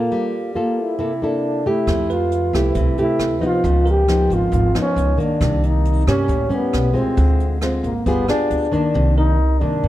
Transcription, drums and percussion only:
1.87 kick, cross-stick, closed hi-hat
2.10 closed hi-hat
2.31 closed hi-hat
2.53 kick, cross-stick, closed hi-hat
2.75 kick, closed hi-hat
2.97 closed hi-hat
3.19 cross-stick, closed hi-hat
3.42 kick, closed hi-hat
3.64 kick, closed hi-hat
3.87 closed hi-hat
4.08 cross-stick, closed hi-hat
4.30 kick, closed hi-hat
4.52 kick, closed hi-hat
4.75 cross-stick, closed hi-hat
4.97 closed hi-hat
5.19 kick, closed hi-hat
5.41 kick, cross-stick, closed hi-hat
5.63 closed hi-hat
5.85 closed hi-hat
6.07 kick, cross-stick, closed hi-hat
6.29 kick, closed hi-hat
6.51 closed hi-hat
6.73 cross-stick, closed hi-hat
6.95 kick, closed hi-hat
7.17 kick, closed hi-hat
7.40 closed hi-hat
7.61 cross-stick, closed hi-hat
7.84 kick, closed hi-hat
8.06 kick, closed hi-hat
8.28 cross-stick, closed hi-hat
8.51 closed hi-hat
8.73 kick, closed hi-hat

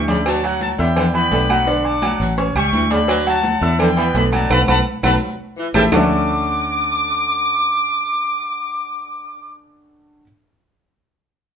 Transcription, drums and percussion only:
0.08 low conga, low agogo, maracas
0.26 cowbell, low agogo, claves, maracas
0.43 high conga, low agogo, maracas
0.61 cowbell, high conga, maracas
0.79 cowbell, maracas
0.96 cowbell, high conga, low conga, low agogo, claves, maracas
1.14 high conga, low agogo, maracas
1.31 cowbell, high conga, low timbale, low agogo, maracas
1.49 high conga, low agogo, claves, maracas
1.67 cowbell, maracas
1.84 high conga, low agogo, maracas
2.02 cowbell, high conga, low agogo, claves, maracas
2.20 cowbell, high conga, maracas
2.38 cowbell, high conga, low agogo, maracas
2.55 high conga, low agogo, claves, maracas
2.73 cowbell, high conga, maracas
2.90 cowbell, high conga, low agogo, maracas
3.08 cowbell, high conga, low agogo, claves, maracas
3.26 high conga, low agogo, maracas
3.43 cowbell, high conga, maracas
3.61 cowbell, maracas
3.79 cowbell, high conga, low conga, low agogo, claves, maracas
3.97 low agogo, maracas
4.15 cowbell, high conga, low timbale, low agogo, maracas
4.33 high conga, low agogo, claves, maracas
4.50 cowbell, high conga, high timbale, claves, maracas
4.68 cowbell, high conga, high timbale, claves, maracas
5.03 cowbell, high conga, high timbale, claves, maracas
5.74 cowbell, high conga, high timbale, claves, maracas
5.92 low bongo, low conga, low timbale, claves, maracas

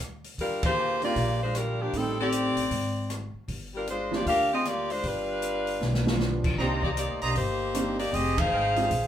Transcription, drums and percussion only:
0.24 open hi-hat
0.38 kick, open hi-hat
0.63 kick, ride
1.02 open hi-hat
1.16 kick, open hi-hat
1.55 cross-stick, closed hi-hat
1.93 kick, open hi-hat
2.32 closed hi-hat
2.57 open hi-hat
2.71 kick, open hi-hat
3.10 cross-stick, closed hi-hat
3.48 kick, open hi-hat
3.87 closed hi-hat
4.13 snare
4.26 kick, open hi-hat
4.65 cross-stick, closed hi-hat
4.90 open hi-hat
5.04 kick, open hi-hat
5.42 closed hi-hat
5.67 open hi-hat
5.81 snare
5.94 snare
6.07 snare
6.20 snare
6.44 kick, crash
6.58 kick, snare
6.83 kick
6.97 closed hi-hat
7.21 open hi-hat
7.35 kick, open hi-hat
7.75 cross-stick, closed hi-hat
7.99 open hi-hat
8.13 kick, open hi-hat
8.38 kick, ride
8.76 open hi-hat
8.90 kick, open hi-hat

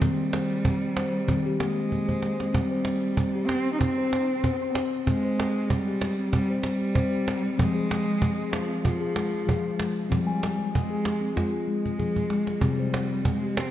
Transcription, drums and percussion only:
0.02 cajon bass
0.33 cajon slap
0.51 cajon slap
0.65 cajon bass
0.97 cajon slap
1.28 cajon bass
1.47 cajon slap
1.60 cajon slap
1.92 cajon bass
2.09 cajon bass
2.22 cajon slap
2.40 cajon slap
2.54 cajon bass
2.85 cajon slap
3.17 cajon bass
3.49 cajon slap
3.81 cajon bass
4.13 cajon slap
4.29 cajon slap
4.44 cajon bass
4.75 cajon slap
5.07 cajon bass
5.40 cajon slap
5.70 cajon bass
6.01 cajon slap
6.33 cajon bass
6.63 cajon slap
6.82 cajon slap
6.95 cajon bass
7.28 cajon slap
7.59 cajon bass
7.91 cajon slap
8.22 cajon bass
8.53 cajon slap
8.85 cajon bass
9.16 cajon slap
9.34 cajon slap
9.49 cajon bass
9.80 cajon slap
10.12 cajon bass
10.43 cajon slap
10.75 cajon bass
11.05 cajon slap
11.37 cajon bass, cajon slap
11.86 cajon bass
11.99 cajon bass
12.16 cajon bass
12.30 cajon slap
12.47 cajon slap
12.61 cajon bass
12.94 cajon slap
13.25 cajon bass
13.57 cajon slap

